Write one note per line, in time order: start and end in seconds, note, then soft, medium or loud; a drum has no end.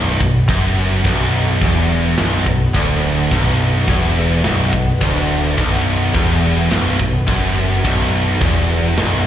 0.00 0.19 B0 loud
0.00 0.20 B1 loud
0.00 9.27 D3 medium
0.00 5.55 F#3 medium
0.00 9.27 B3 medium
0.21 0.47 B0 medium
0.21 0.43 B1 medium
0.21 kick medium
0.49 1.01 F#1 loud
0.49 1.05 F#2 medium
0.49 kick loud
0.49 crash medium
1.05 1.58 B0 loud
1.05 1.61 B1 loud
1.05 kick loud
1.05 crash medium
1.61 2.14 E1 loud
1.61 2.18 E2 loud
1.61 kick loud
1.61 crash medium
2.18 2.45 B0 medium
2.18 2.45 B1 loud
2.18 snare loud
2.18 crash medium
2.46 2.73 B0 medium
2.46 2.69 B1 medium
2.46 kick medium
2.74 3.27 D1 loud
2.74 3.31 D2 loud
2.74 kick loud
2.74 crash medium
3.31 3.84 B0 loud
3.31 3.89 B1 loud
3.31 kick loud
3.31 crash medium
3.88 4.41 E1 medium
3.88 4.44 E2 loud
3.88 kick loud
3.88 crash medium
4.44 4.71 B0 medium
4.44 4.72 B1 loud
4.44 snare loud
4.44 crash medium
4.73 4.99 B0 medium
4.73 4.96 B1 medium
4.73 kick loud
5.01 5.54 D1 loud
5.01 5.57 D2 loud
5.01 kick medium
5.01 crash medium
5.57 6.11 B0 loud
5.57 6.14 B1 loud
5.57 9.27 E3 medium
5.57 kick loud
5.57 crash medium
6.14 6.67 E1 medium
6.14 6.70 E2 loud
6.14 kick loud
6.14 crash medium
6.70 6.98 B0 loud
6.70 6.98 B1 loud
6.70 snare loud
6.70 crash medium
6.99 7.26 B0 medium
6.99 7.22 B1 medium
6.99 kick medium
7.27 7.81 F#1 loud
7.27 7.84 F#2 medium
7.27 kick loud
7.27 crash medium
7.84 8.38 B0 loud
7.84 8.40 B1 loud
7.84 kick loud
7.84 crash medium
8.41 8.94 E1 medium
8.41 8.97 E2 loud
8.41 kick loud
8.41 crash medium
8.98 9.24 B0 loud
8.98 9.26 B1 loud
8.98 snare loud
8.98 crash medium